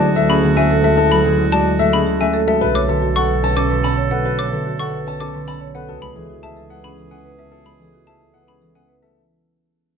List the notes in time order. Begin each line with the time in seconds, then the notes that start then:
Already playing: D2 D3 F#3 G#3 A3 C#4 F#4
0.02 G#4
0.16 A3 A4 E5
0.29 C#4 G#4 B5
0.43 D3 G#4
0.57 A3 C#4 E5 G#5
0.70 A4
0.84 G#3 F#4 A4 E5
0.97 E4 A4
1.11 F#3 A4 B5
1.25 D3 G#4
1.38 E4
1.52 G#3 F#4 D5 A5
1.66 G#4
1.79 A3 A4 E5
1.93 C#4 G#4 B5
2.07 D3 G#4
2.20 A3 C#4 E5 G#5
2.34 A4
2.48 G#3 F#4 A4 E5
2.61 B1 F#4 A4 B4
2.74 A3 C#5 D6
2.88 D3 A4 B4
3.02 F#4
3.16 B3 A4 F#5 C#6
3.29 B4
3.43 C#4 C#5 A5
3.57 C#4 A4 D6
3.70 D3 B4
3.84 C#4 A5 B5
3.97 C#5
4.11 B3 A4 B4 F#5
4.25 F#4 B4
4.38 A3 C#5 D6
4.52 D3 A4 B4
4.66 F#4
4.79 B3 A4 F#5 C#6
5.07 C#4 C#5 A5
5.20 C#4 A4 D6
5.34 D3 B4
5.47 C#4 A5 B5
5.61 C#5
5.74 B3 A4 B4 F#5
5.88 C#2 F#4 G#4 A4
6.02 G#3 B4 B5
6.16 E3 G#4 A4
6.30 F#4
6.43 A3 G#4 E5 A5
6.57 A4
6.70 B3 B4 F#5
6.84 C#4 G#4 B5
6.98 E3 A4
7.11 B3 C#4 F#5 G#5
7.25 B4
7.38 A3 G#4 A4 E5
7.52 F#4 A4
7.66 G#3 B4 B5
7.79 E3 G#4 A4
7.94 F#4
8.07 A3 G#4 E5 A5
8.21 A4
8.34 B3 B4 F#5
8.48 C#4 G#4 B5
8.62 E3 A4
8.75 B3 C#4 F#5 G#5
8.89 B4
9.03 A3 G#4 A4 E5